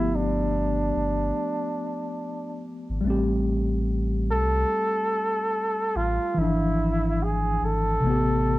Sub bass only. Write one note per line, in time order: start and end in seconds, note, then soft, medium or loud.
0.00 0.92 G1 loud
0.96 1.31 G1 medium
2.89 3.02 G#1 medium
3.04 4.30 A1 loud
4.29 4.65 C2 medium
5.96 6.19 A1 medium
6.37 7.58 G#1 loud
7.62 7.98 G#1 loud
8.04 8.59 A1 loud